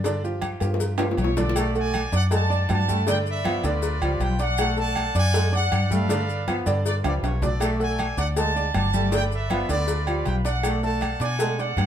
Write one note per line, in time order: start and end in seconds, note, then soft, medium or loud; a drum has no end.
0.00 0.55 G2 loud
0.04 0.20 D3 loud
0.04 0.21 D4 loud
0.04 0.21 D5 medium
0.04 cowbell loud
0.04 high conga soft
0.04 low agogo medium
0.04 maracas medium
0.24 0.55 F3 medium
0.24 0.55 F4 medium
0.24 0.55 G4 medium
0.24 high conga soft
0.24 maracas soft
0.42 cowbell medium
0.42 high conga medium
0.42 low agogo loud
0.42 claves medium
0.42 maracas soft
0.60 1.14 G2 medium
0.60 0.92 F3 medium
0.60 0.92 F4 medium
0.60 0.93 G4 medium
0.60 high bongo medium
0.60 high conga soft
0.60 low agogo medium
0.60 maracas medium
0.74 high bongo medium
0.80 cowbell loud
0.80 high conga soft
0.80 maracas medium
0.98 1.30 F3 medium
0.98 1.31 F4 medium
0.98 1.31 G4 medium
0.98 low bongo loud
0.98 high conga soft
0.98 high timbale loud
0.98 low agogo loud
0.98 claves medium
0.98 maracas soft
1.11 low bongo medium
1.17 2.07 B1 loud
1.17 1.37 C#5 medium
1.17 cowbell medium
1.17 high conga medium
1.17 low agogo medium
1.17 maracas soft
1.24 low bongo loud
1.37 1.52 D3 medium
1.37 1.53 D4 medium
1.37 2.09 F#4 medium
1.37 2.09 A4 medium
1.37 1.53 D5 medium
1.37 1.74 D5 medium
1.37 cowbell medium
1.37 low bongo medium
1.37 high conga medium
1.37 low timbale medium
1.37 maracas medium
1.49 low bongo medium
1.56 2.01 A3 loud
1.56 cowbell loud
1.56 high conga soft
1.56 low agogo loud
1.56 claves medium
1.56 maracas loud
1.75 2.06 A3 medium
1.75 2.06 A4 medium
1.75 2.32 D5 medium
1.75 2.06 F#5 medium
1.75 2.11 G#5 loud
1.75 high conga soft
1.75 maracas soft
1.94 cowbell medium
1.94 high conga medium
1.94 low agogo loud
1.94 claves medium
1.94 maracas soft
2.12 2.65 F#2 loud
2.12 2.28 D4 medium
2.12 2.28 D5 medium
2.12 2.23 F#5 loud
2.12 2.28 D6 medium
2.12 cowbell medium
2.12 maracas medium
2.30 2.63 G#3 medium
2.30 2.47 A3 medium
2.30 2.47 A4 medium
2.30 2.70 D5 medium
2.30 2.70 F#5 medium
2.30 2.47 A5 medium
2.30 2.68 A5 loud
2.30 cowbell loud
2.30 high conga soft
2.30 low agogo medium
2.30 maracas medium
2.50 2.81 D4 medium
2.50 2.81 D5 medium
2.50 2.81 D6 medium
2.50 high conga soft
2.50 maracas soft
2.69 3.58 G2 loud
2.69 3.05 D5 medium
2.69 3.06 F#5 medium
2.69 3.06 A5 loud
2.69 cowbell medium
2.69 high conga medium
2.69 low timbale medium
2.69 low agogo loud
2.69 claves medium
2.69 maracas soft
2.88 3.04 G3 medium
2.88 3.20 A3 medium
2.88 3.04 G4 medium
2.88 3.04 G5 medium
2.88 high conga medium
2.88 maracas medium
3.07 3.38 D3 loud
3.07 3.39 D4 loud
3.07 3.27 B4 medium
3.07 3.39 D5 loud
3.07 3.65 D5 medium
3.07 3.17 G5 loud
3.07 cowbell loud
3.07 high conga soft
3.07 low agogo medium
3.07 maracas loud
3.26 3.99 A4 medium
3.26 3.64 B4 medium
3.26 3.63 E5 loud
3.26 high conga soft
3.26 maracas soft
3.45 3.60 F3 medium
3.45 3.77 B3 medium
3.45 3.61 F4 medium
3.45 3.61 F5 medium
3.45 cowbell medium
3.45 high conga medium
3.45 low agogo loud
3.45 claves medium
3.45 maracas soft
3.64 3.99 D2 loud
3.64 3.95 D3 loud
3.64 3.95 D4 medium
3.64 4.37 F4 medium
3.64 4.36 B4 medium
3.64 3.95 D5 medium
3.64 4.22 D5 loud
3.64 low agogo medium
3.64 maracas medium
3.83 cowbell loud
3.83 high conga soft
3.83 maracas medium
4.02 4.19 C#2 medium
4.02 4.33 F3 medium
4.02 4.34 G3 medium
4.02 4.33 F4 medium
4.02 4.33 F5 medium
4.02 high conga soft
4.02 low agogo loud
4.02 claves medium
4.02 maracas soft
4.20 5.09 B1 loud
4.20 4.39 G5 loud
4.20 cowbell medium
4.20 high conga medium
4.20 low agogo medium
4.20 maracas soft
4.39 4.70 D4 medium
4.39 5.12 A4 medium
4.39 4.70 D5 medium
4.39 4.77 D5 medium
4.39 4.77 F#5 loud
4.39 4.71 D6 medium
4.39 cowbell medium
4.39 maracas medium
4.57 5.04 A3 medium
4.57 cowbell loud
4.57 high conga soft
4.57 low agogo loud
4.57 claves medium
4.57 maracas medium
4.77 5.08 A3 medium
4.77 5.09 A4 medium
4.77 5.15 D5 medium
4.77 5.50 F#5 medium
4.77 5.09 A5 medium
4.77 5.13 A5 loud
4.77 high conga soft
4.77 maracas soft
4.95 cowbell medium
4.95 high conga medium
4.95 low agogo loud
4.95 claves medium
4.95 maracas soft
5.15 5.68 F#2 loud
5.15 5.31 D4 medium
5.15 5.31 D5 medium
5.15 5.54 D5 medium
5.15 5.51 G#5 loud
5.15 5.31 D6 medium
5.15 cowbell medium
5.15 maracas medium
5.34 5.66 G#3 medium
5.34 5.50 A3 medium
5.34 5.50 A4 medium
5.34 5.50 A5 medium
5.34 cowbell loud
5.34 high conga soft
5.34 low agogo medium
5.34 maracas loud
5.52 5.84 D4 medium
5.52 5.91 A4 medium
5.52 5.84 D5 medium
5.52 6.07 D5 medium
5.52 5.89 F#5 loud
5.52 5.84 D6 medium
5.52 high conga soft
5.52 maracas soft
5.72 6.61 G2 medium
5.72 cowbell medium
5.72 high conga medium
5.72 low agogo loud
5.72 claves medium
5.72 maracas soft
5.90 6.06 G3 medium
5.90 6.23 A3 medium
5.90 6.06 G4 medium
5.90 6.63 A4 medium
5.90 6.63 B4 medium
5.90 6.59 F5 loud
5.90 6.06 G5 medium
5.90 high conga medium
5.90 maracas medium
6.09 6.41 D3 loud
6.09 6.41 D4 medium
6.09 6.41 D5 loud
6.09 cowbell loud
6.09 high conga soft
6.09 low agogo medium
6.09 maracas loud
6.29 high conga soft
6.29 maracas soft
6.48 6.63 F3 medium
6.48 6.80 B3 medium
6.48 6.63 F4 medium
6.48 6.64 F5 medium
6.48 cowbell medium
6.48 high conga loud
6.48 low agogo loud
6.48 claves medium
6.48 maracas soft
6.66 7.02 G2 loud
6.66 6.97 D3 medium
6.66 6.97 D4 medium
6.66 6.98 D5 loud
6.66 high conga soft
6.66 low agogo medium
6.66 maracas medium
6.85 7.57 F4 medium
6.85 7.58 B4 medium
6.85 6.94 D5 medium
6.85 cowbell loud
6.85 high conga soft
6.85 maracas medium
7.04 7.22 C#2 medium
7.04 7.35 F3 medium
7.04 7.37 G3 medium
7.04 7.35 F4 medium
7.04 7.14 D5 loud
7.04 7.36 F5 medium
7.04 high conga medium
7.04 high timbale medium
7.04 low agogo loud
7.04 claves medium
7.04 maracas soft
7.23 8.12 B1 loud
7.23 7.41 C#5 medium
7.23 cowbell medium
7.23 high timbale medium
7.23 low agogo medium
7.23 maracas soft
7.42 7.73 D4 medium
7.42 8.14 F#4 medium
7.42 8.14 A4 medium
7.42 7.73 D5 medium
7.42 7.78 D5 loud
7.42 7.74 D6 medium
7.42 cowbell medium
7.42 low conga loud
7.42 low timbale medium
7.42 maracas medium
7.60 8.06 A3 loud
7.60 cowbell loud
7.60 high conga soft
7.60 low agogo loud
7.60 claves medium
7.60 maracas loud
7.80 8.11 A3 medium
7.80 8.11 A4 medium
7.80 8.37 D5 medium
7.80 8.11 F#5 medium
7.80 8.16 G#5 loud
7.80 high conga soft
7.80 maracas soft
7.99 cowbell medium
7.99 high conga medium
7.99 low agogo loud
7.99 claves medium
7.99 maracas soft
8.17 8.70 D2 medium
8.17 8.33 D4 medium
8.17 8.34 D5 medium
8.17 8.27 F#5 loud
8.17 8.33 D6 medium
8.17 cowbell medium
8.17 maracas medium
8.36 8.69 G#3 medium
8.36 8.52 A3 medium
8.36 8.53 A4 medium
8.36 8.75 D5 medium
8.36 8.74 F#5 medium
8.36 8.53 A5 medium
8.36 8.73 A5 loud
8.36 cowbell loud
8.36 high conga soft
8.36 low agogo medium
8.36 maracas loud
8.56 8.87 D4 medium
8.56 8.87 D5 medium
8.56 8.87 D6 medium
8.56 high conga soft
8.56 maracas soft
8.74 9.63 G1 loud
8.74 9.11 D5 medium
8.74 9.11 F#5 medium
8.74 9.10 A5 loud
8.74 cowbell medium
8.74 high conga medium
8.74 low timbale medium
8.74 low agogo loud
8.74 claves medium
8.74 maracas soft
8.93 9.09 G3 medium
8.93 9.27 A3 medium
8.93 9.09 G4 medium
8.93 9.10 G5 medium
8.93 high conga loud
8.93 maracas medium
9.12 9.43 D3 loud
9.12 9.44 D4 medium
9.12 9.32 B4 medium
9.12 9.44 D5 medium
9.12 9.69 D5 medium
9.12 9.22 G5 loud
9.12 cowbell loud
9.12 low agogo medium
9.12 maracas medium
9.32 10.04 A4 medium
9.32 9.70 B4 medium
9.32 9.67 E5 loud
9.32 high conga soft
9.32 maracas soft
9.50 9.66 F3 medium
9.50 9.83 B3 medium
9.50 9.66 F4 medium
9.50 9.66 F5 medium
9.50 cowbell medium
9.50 high conga medium
9.50 low agogo loud
9.50 claves medium
9.50 maracas soft
9.69 10.22 D2 loud
9.69 10.00 D3 loud
9.69 10.01 D4 loud
9.69 10.42 F4 medium
9.69 10.42 B4 medium
9.69 10.01 D5 medium
9.69 10.23 D5 loud
9.69 low agogo medium
9.69 maracas medium
9.88 cowbell loud
9.88 high conga soft
9.88 maracas medium
10.07 10.38 F3 medium
10.07 10.39 G3 medium
10.07 10.39 F4 medium
10.07 10.39 F5 medium
10.07 high conga soft
10.07 low agogo loud
10.07 claves medium
10.07 maracas soft
10.25 11.15 B1 loud
10.25 10.35 G5 medium
10.25 cowbell medium
10.25 high conga medium
10.25 low agogo medium
10.25 maracas soft
10.45 10.76 D4 medium
10.45 11.17 A4 medium
10.45 10.83 D5 medium
10.45 10.76 D5 medium
10.45 10.80 F#5 medium
10.45 10.76 D6 medium
10.45 cowbell medium
10.45 maracas medium
10.63 11.09 A3 loud
10.63 cowbell loud
10.63 high conga soft
10.63 low agogo loud
10.63 claves medium
10.63 maracas medium
10.83 11.14 A3 medium
10.83 11.14 A4 medium
10.83 11.20 D5 medium
10.83 11.56 F#5 medium
10.83 11.19 A5 loud
10.83 11.15 A5 medium
10.83 high conga soft
10.83 maracas soft
11.01 cowbell medium
11.01 high conga medium
11.01 low agogo loud
11.01 claves medium
11.01 maracas soft
11.20 11.73 B2 medium
11.20 11.37 D4 medium
11.20 11.37 D5 medium
11.20 11.58 D5 medium
11.20 11.56 G#5 loud
11.20 11.37 D6 medium
11.20 cowbell medium
11.20 maracas medium
11.39 11.71 G#3 medium
11.39 11.56 A3 medium
11.39 11.56 A4 medium
11.39 11.56 A5 medium
11.39 cowbell loud
11.39 high conga soft
11.39 low agogo medium
11.39 maracas loud
11.59 11.86 D4 medium
11.59 11.86 A4 medium
11.59 11.86 D5 medium
11.59 11.86 F#5 loud
11.59 11.86 D6 medium
11.59 high conga soft
11.59 maracas soft
11.77 11.86 G2 medium
11.77 cowbell medium
11.77 high conga medium
11.77 low timbale medium
11.77 low agogo loud
11.77 claves medium
11.77 maracas soft